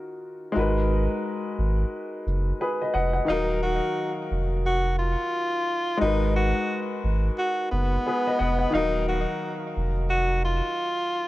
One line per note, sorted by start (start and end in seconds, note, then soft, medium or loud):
0.00 0.50 D#3 medium
0.00 0.51 D#4 medium
0.00 0.52 F4 medium
0.00 0.53 F#4 medium
0.00 0.53 A#4 medium
0.52 3.23 G#3 medium
0.52 3.24 D#4 medium
0.52 3.25 F#4 medium
0.56 1.08 G#1 loud
0.56 2.24 A#4 medium
0.56 2.25 B4 medium
1.59 1.84 G#1 medium
2.27 2.52 F#1 loud
2.61 2.80 G#4 medium
2.61 2.80 B4 medium
2.82 2.95 B4 medium
2.82 2.93 D#5 medium
2.94 3.21 F1 loud
2.94 3.12 D#5 medium
2.94 3.12 F#5 medium
3.13 3.47 D#5 medium
3.13 3.47 F#5 medium
3.25 5.96 D#3 medium
3.25 5.96 D#4 medium
3.25 5.97 F5 medium
3.29 3.80 D#1 loud
3.29 5.98 F#3 medium
3.29 3.60 D#4 loud
3.29 5.99 A#4 medium
3.63 4.14 F#4 medium
4.31 5.16 F1 medium
4.66 4.96 F#4 medium
4.99 5.97 F4 medium
5.97 8.68 G#3 medium
5.97 8.69 D#4 medium
5.97 6.32 D#4 loud
5.97 8.70 F#4 medium
6.02 6.53 G#1 loud
6.02 7.69 A#4 medium
6.02 7.70 B4 medium
6.36 6.87 F#4 medium
7.04 7.30 G#1 medium
7.38 7.69 F#4 medium
7.71 7.98 F#1 loud
7.71 8.70 B3 medium
8.06 8.26 G#4 medium
8.06 8.26 B4 medium
8.27 8.40 B4 medium
8.27 8.38 D#5 medium
8.39 8.66 F1 loud
8.39 8.58 D#5 medium
8.39 8.57 F#5 medium
8.59 8.92 D#5 medium
8.59 8.92 F#5 medium
8.70 11.28 D#3 medium
8.70 11.28 D#4 medium
8.70 11.28 F5 medium
8.74 9.26 D#1 loud
8.74 11.28 F#3 medium
8.74 9.05 D#4 loud
8.74 11.28 A#4 medium
9.08 9.59 F#4 medium
9.77 10.61 F1 medium
10.10 10.41 F#4 medium
10.45 11.28 F4 medium